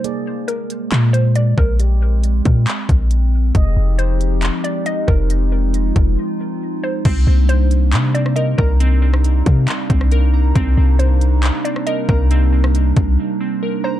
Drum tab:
CC |----------------|----------------|----------------|----------------|
HH |x---x-x-x-x-x---|x---x-x-x-x-x---|x---x-x-x-x-x---|x---x-x---------|
CP |--------x-------|--------x-------|--------x-------|----------------|
SD |----------------|----------------|----------------|----------------|
BD |--------------o-|------o---o-----|o-------------o-|------o---------|

CC |x---------------|----------------|----------------|----------------|
HH |x---x-x-x-x-x---|x---x-x-x-x-x---|x---x-x-x-x-x---|x---x-x---------|
CP |--------x-------|--------x-------|--------x-------|----------------|
SD |-----------r----|---r-------r----|-----------r----|---r------------|
BD |o-------------o-|------o---o-----|o-------------o-|------o---------|